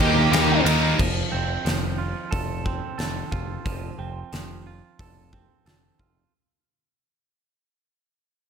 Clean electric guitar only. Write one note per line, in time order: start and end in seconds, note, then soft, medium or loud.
0.99 1.64 F3 medium
1.32 2.65 C4 medium
1.65 3.65 F3 medium
1.98 3.31 F4 medium
2.31 2.97 A4 medium
2.65 3.98 C4 medium
2.98 4.65 A4 medium
3.32 4.66 F4 medium
3.65 4.32 F3 medium
3.99 5.32 C4 medium
4.33 5.99 F3 medium
4.67 5.98 F4 medium
5.00 5.65 A4 medium
5.33 6.33 C4 medium
5.66 6.32 A4 medium
6.00 6.32 F4 medium